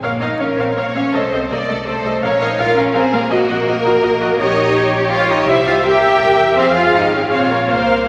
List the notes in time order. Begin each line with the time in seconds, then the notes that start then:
0.02 A#1 A#3 A#4 C#5 F5
0.20 A#1 D#4 C#5 D#5 F5
0.39 A#1 C#4 A#4 C#5 F5
0.57 A#1 C4 C5 C#5 F5
0.76 A#1 A#3 A#4 C#5 F5
0.94 A#1 C#4 C#5 F5
1.13 C2 A3 A4 C5 D#5
1.32 C2 C4 A4 C5 D#5
1.49 C2 A#3 A4 A#4 D5 D#5
1.67 C2 A3 A4 D#5
1.85 C2 A3 A4 C5 D#5
2.04 C2 A4 D#5
2.22 A#1 C#4 A#4 C#5 F5
2.40 A#1 D#4 A#4 D#5 F5
2.59 A#1 F4 A#4 F5
2.76 A#1 C#4 A#4 C#5 F5
2.94 A#1 C4 G#4 A#4 C5 F5
3.12 A#1 A#3 A#4 F5
3.31 A#1 A#3 F#4 A#4 D#5
3.49 A#1 F#4 D#5
3.67 A#1 F#4 A#4 D#5
3.85 A#1 F#4 D#5
4.03 A#1 F#4 D#5
4.21 A#1 F#4 D#5
4.38 A#1 D#4 G4 A#4 C#5 D#5
4.75 G4
4.92 C#4 C#5
5.11 F4 C#5 F5
5.29 D#4 D#5
5.47 C2 E4 G4 C5 E5
5.65 F4 F5
5.84 G4 A#4 E5 G5
6.21 E2
6.57 F2 C4 G#4 C5 F5
6.76 F4 F5
6.93 G#1 D#4 G4 D#5
7.12 C#4 C#5
7.30 A#1 C4 F4 C5 C#5 F5
7.50 A#3 A#4
7.68 C2 A#3 A#4 C5 F5